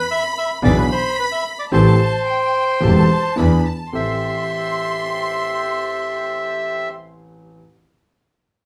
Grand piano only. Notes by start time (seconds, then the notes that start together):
0.62 B1 B2 E3 B3 D4 G#4
1.72 A1 A2 E3 A3 C4 G4
2.80 E1 E2 E3 A3 C4 G4
3.36 E2 E3 B3 D4 G#4
3.93 A1 C4 G4 A4